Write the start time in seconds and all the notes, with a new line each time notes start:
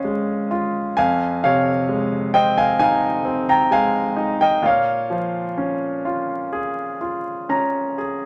Already playing: A#2 G#3 C#4 F4 C5 C#5 D#5 F5
0.04 G#3
0.51 F4
0.97 F2 F5 G#5
1.44 C3 C#5 F5
1.89 G#3
2.34 C4 D#5 G5
2.58 F5 G#5
2.79 D#4 F5 G#5
3.25 C4
3.49 G5 A#5
3.71 G#3 F5 G#5
4.16 D#4
4.41 D#5 G5
4.62 A#2 F5
4.67 C#5
5.10 F3
5.58 C#4
6.05 F4
6.53 G#4
7.01 F4
7.49 C#4 A#5
7.98 G#4